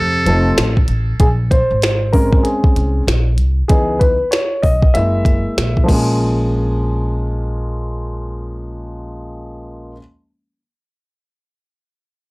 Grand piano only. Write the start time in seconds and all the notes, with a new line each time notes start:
0.26 F3 A3 C4 D#4 A4
1.20 G#4
1.51 C5
2.13 G#3 C4 C#4 A#4
2.43 G#4
3.68 E3 B3 D#4 G#4
3.99 B4
4.31 C#5
4.62 D#5
4.94 G#3 A#3 E4 E5
5.84 F3 G#3
5.88 A#3 C#4
5.93 G#4